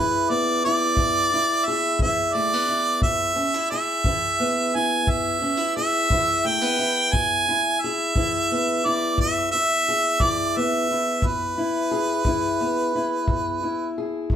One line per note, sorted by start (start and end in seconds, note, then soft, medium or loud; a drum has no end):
0.00 0.56 E3 medium
0.00 0.66 E4 medium
0.00 1.67 G#4 medium
0.00 0.31 B4 medium
0.30 2.34 B3 soft
0.30 0.63 D5 medium
0.65 1.33 E4 medium
0.65 1.67 D5 medium
0.97 1.60 E2 medium
0.97 kick medium
1.34 2.02 E4 soft
1.66 3.71 G#4 medium
1.66 2.00 E5 medium
1.99 2.63 E3 medium
1.99 2.69 E4 medium
1.99 2.36 E5 medium
1.99 kick medium
2.34 2.53 A3 medium
2.34 3.03 D5 medium
2.53 3.04 B3 soft
2.69 3.36 E4 medium
3.02 3.65 E2 medium
3.02 3.67 E5 medium
3.02 kick medium
3.36 3.54 C#4 medium
3.54 4.05 E4 soft
3.71 5.76 G#4 medium
3.71 4.77 E5 medium
4.04 4.67 E3 medium
4.04 4.75 E4 medium
4.04 kick medium
4.40 6.44 B3 medium
4.75 5.41 E4 medium
4.75 5.11 G#5 medium
5.07 5.69 E2 medium
5.07 5.76 E5 medium
5.07 kick medium
5.42 5.57 C#4 medium
5.57 6.10 E4 soft
5.77 7.84 G#4 medium
5.77 6.48 E5 medium
6.10 6.73 E3 medium
6.10 6.79 E4 medium
6.10 kick medium
6.45 6.61 A3 medium
6.45 7.15 G5 medium
6.61 7.13 B3 soft
6.79 7.48 E4 medium
7.13 7.76 E2 medium
7.13 7.83 G#5 medium
7.13 kick medium
7.49 8.17 E4 medium
7.82 9.87 G#4 medium
7.82 8.87 E5 medium
8.16 8.78 E3 medium
8.16 8.85 E4 medium
8.16 kick medium
8.51 10.56 B3 medium
8.86 9.53 E4 medium
8.86 9.19 D5 medium
9.18 9.80 E2 medium
9.18 9.51 E5 medium
9.18 kick medium
9.51 10.21 E4 medium
9.51 10.23 E5 medium
9.88 11.20 G#4 medium
10.20 10.83 E3 medium
10.20 10.90 E4 medium
10.20 10.59 D5 medium
10.20 kick medium
10.57 11.20 B3 medium
10.57 11.28 E5 medium
10.91 11.57 E4 medium
11.22 11.85 E2 medium
11.22 kick medium
11.26 13.98 B4 medium
11.58 12.26 E4 medium
11.91 13.96 G#4 medium
12.25 12.88 E3 medium
12.25 12.95 E4 medium
12.25 kick medium
12.61 14.36 B3 medium
12.95 13.63 E4 medium
13.28 13.90 E2 medium
13.28 kick medium
13.63 14.36 E4 medium
13.98 14.36 G#4 medium
14.30 14.36 E2 medium
14.30 kick medium